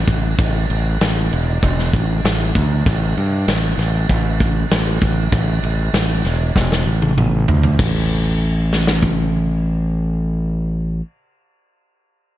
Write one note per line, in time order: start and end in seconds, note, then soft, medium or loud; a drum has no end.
0.07 0.35 A1 medium
0.07 kick loud
0.07 crash medium
0.38 0.66 A1 medium
0.38 kick loud
0.38 crash loud
0.70 0.97 A1 medium
0.70 crash medium
1.01 1.28 A1 medium
1.01 snare loud
1.01 crash medium
1.32 1.59 E1 medium
1.32 crash medium
1.63 1.90 E1 loud
1.63 kick medium
1.63 crash medium
1.79 snare soft
1.93 2.20 A1 medium
1.93 kick medium
1.93 crash medium
2.24 2.51 A1 medium
2.24 snare loud
2.24 crash medium
2.55 2.82 D2 medium
2.55 kick medium
2.55 crash medium
2.86 3.13 A1 loud
2.86 kick loud
2.86 crash loud
3.17 3.44 G2 medium
3.17 crash medium
3.48 3.75 A1 medium
3.48 snare loud
3.48 crash medium
3.78 4.05 A1 medium
3.78 snare soft
3.78 crash medium
4.09 4.64 A1 loud
4.09 kick medium
4.09 crash medium
4.40 kick medium
4.40 crash medium
4.71 4.98 A1 medium
4.71 snare loud
4.71 crash medium
5.02 5.29 A1 medium
5.02 kick loud
5.02 crash medium
5.32 5.59 A1 loud
5.32 kick loud
5.32 crash loud
5.63 5.90 A1 medium
5.63 crash medium
5.93 6.21 A1 medium
5.93 snare loud
5.93 crash medium
6.25 6.52 E1 medium
6.25 snare soft
6.25 crash medium
6.55 6.83 E1 loud
6.55 kick medium
6.55 snare medium
6.72 snare medium
6.86 7.13 A1 medium
7.02 high tom medium
7.17 7.45 A1 loud
7.17 mid tom medium
7.48 7.76 D2 medium
7.48 floor tom loud
7.63 floor tom medium
7.79 11.00 A1 loud
7.79 kick loud
7.79 crash medium
8.73 snare medium
8.87 snare medium
9.03 kick medium